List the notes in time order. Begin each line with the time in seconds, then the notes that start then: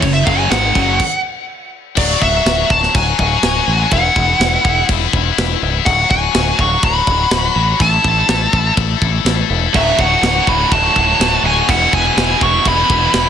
0.01 F#1 F#2 C#3 C#5, kick, crash
0.13 E5
0.25 F#1 F#2 C#3 F#3 F5, kick, crash
0.39 G#5
0.49 G#1 G#2 D#3 G#3 F#5, snare, crash
0.74 F#1 F#2 C#3 F#3, kick, crash
1.00 kick, crash
1.96 D1 F#3 F#4 D5, kick, crash
2.04 F#3 F#4
2.11 F#3 F#4
2.19 D1 F#3 F#4 E5, kick
2.27 F#3 F#4
2.34 F#3 F#4
2.43 D1 F#3 F#4, snare, crash
2.50 F#3 F#4
2.58 F#3 F#4
2.66 F#3 F#4
2.70 D1 F#3 A5, kick
2.75 F#4
2.81 F#3 F#4, snare
2.90 F#3 F#4
2.95 D1 F#3 F#4 G#5, kick, crash
3.04 F#3 F#4
3.12 F#3 F#4
3.19 D1 F#3 F#4, kick
3.28 F#3 F#4
3.35 F#3 F#4
3.43 D1 F#3 F#4, snare, crash
3.51 F#3 F#4
3.59 F#3 F#4
3.66 A1 F#3 F#4
3.74 F#3 F#4
3.82 F#3 F#4
3.91 E1 B3 E4 F#5, kick, crash
3.99 B3 E4
4.06 B3 E4
4.14 E1 B3 E4, kick
4.22 B3 E4
4.30 B3 E4
4.38 E1 B3 E4, snare, crash
4.45 B3 E4
4.53 B3 E4
4.61 E1 B3 E4, kick
4.69 B3 E4
4.76 B3 E4
4.84 B3 E4
4.89 E1 B3 E4, kick, crash
4.99 B3 E4
5.08 B3 E4
5.13 E1 B3 E4, kick
5.22 B3 E4
5.30 B3 E4
5.38 E1 B3 E4, snare, crash
5.46 B3 E4
5.54 B3 E4
5.62 C#1 B3 E4
5.71 B3 E4
5.78 B3 E4
5.85 D1 F#3 F#4 F#5, kick, crash
5.93 F#3 F#4
6.00 F#3 F#4
6.07 D1 F#3 F#4 G#5, kick
6.16 F#3 F#4
6.24 F#3 F#4
6.32 D1 F#3 F#4, snare, crash
6.39 F#3 F#4
6.47 F#3 F#4
6.55 D1 F#3 F#4, kick
6.61 F#3 F#4 C#6
6.70 F#3 F#4
6.78 F#3 F#4
6.83 D1 F#3 F#4 B5, kick, crash
6.94 F#3 F#4
7.01 F#3 F#4
7.07 D1 F#3 F#4, kick
7.17 F#3 F#4
7.25 F#3 F#4
7.31 D1 F#3 F#4, snare, crash
7.40 F#3 F#4
7.48 F#3 F#4
7.56 A1 F#3 F#4
7.63 F#3 F#4
7.72 F#3 F#4
7.79 A1 E4 A4 A5, kick, crash
7.88 E4 A4
7.94 E4 A4
8.02 A1 E4 A4, kick
8.10 E4 A4
8.18 E4 A4
8.26 A1 E4 A4, snare, crash
8.34 E4 A4
8.42 E4 A4
8.50 A1 E4 A4, kick
8.57 E4 A4
8.65 E4 A4
8.72 E4 A4
8.77 A1 E4 A4, kick, crash
8.88 E4 A4
8.96 E4 A4
9.02 A1 E4 A4, kick
9.11 E4 A4
9.18 E4 A4
9.25 A1 E4, snare, crash
9.30 A4
9.34 E4 A4
9.42 E4 A4
9.50 E1 E4 A4
9.58 E4 A4
9.66 E4 A4
9.73 D1 D2 A2 F#3 F#4 E5, kick, crash
9.80 D2 A2 F#3 F#4
9.89 D2 A2 F#3 F#4
9.97 D1 D2 A2 F#3 F#4 F#5, kick
10.04 D2 A2 F#3 F#4
10.13 D2 A2 F#3 F#4
10.20 D1 D2 A2 F#3 F#4, snare, crash
10.28 D2 A2 F#3 F#4
10.36 D2 A2 F#3 F#4
10.43 D2 A2 F#3 F#4
10.47 D1 B5, kick
10.52 D2 A2 F#3 F#4
10.59 D2 A2 F#3 F#4
10.67 D2 A2 F#3 F#4
10.71 D1 D2 A2 A5, kick, crash
10.75 F#3 F#4
10.81 D2 A2 F#3 F#4
10.90 D2 A2 F#3 F#4
10.96 D1 D2 A2 F#3 F#4, kick
11.05 D2 A2 F#3 F#4
11.13 D2 A2 F#3 F#4
11.19 D1 D2 A2 F#3 F#4, snare, crash
11.29 D2 A2 F#3 F#4
11.37 D2 A2 F#3 F#4
11.43 D1 D2 A2 F#3 F#4 G#5
11.52 D2 A2 F#3 F#4
11.60 D2 A2 F#3 F#4
11.67 E1 E2 B2 B3 E4 F#5, kick, crash
11.75 E2 B2 B3 E4
11.81 E2 B2 B3 E4
11.90 E1 E2 B2 B3 E4, kick
11.94 E2 B2 G#5
11.99 B3 E4
12.06 E2 B2 B3 E4
12.13 E2 B2 B3 E4
12.17 E1, snare, crash
12.22 E2 B2 B3 E4
12.29 E2 B2 B3 E4
12.37 E2 B2 B3 E4
12.41 E1 E2 C#6, kick
12.45 B2 B3 E4
12.52 E2 B2 B3 E4
12.59 E2 B2 B3 E4
12.65 E1 E2 B2 B3 B5, kick, crash
12.70 E4
12.75 E2 B2 B3 E4
12.83 E2 B2 B3 E4
12.90 E1 E2 B2 B3 E4, kick
12.99 E2 B2 B3 E4
13.06 E2 B2 B3 E4
13.13 E1 E2 B2 B3 E4, snare, crash
13.23 E2 B2 B3 E4